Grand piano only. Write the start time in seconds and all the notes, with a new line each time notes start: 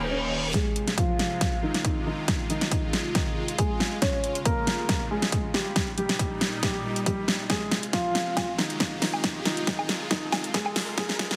0.11 C#4
0.54 G#3 G#4
0.98 F3 F4
1.63 D#3 D#4
2.06 D#3 D#4
2.50 D#3 D#4
3.15 D#3 D#4
3.59 G#3 G#4
4.02 C#4 C#5
4.46 A#3 A#4
5.11 G#3 G#4
5.54 G3 G4
5.98 G3 G4
6.63 G3 G4
7.06 G3 G4
7.50 G#3 G#4
7.93 F3 F4
8.59 D#3 D#4
9.02 D#3 D#4
9.46 D#3 D#4
10.11 D#3 D#4
10.54 G#3 G#4
10.98 G#3 G#4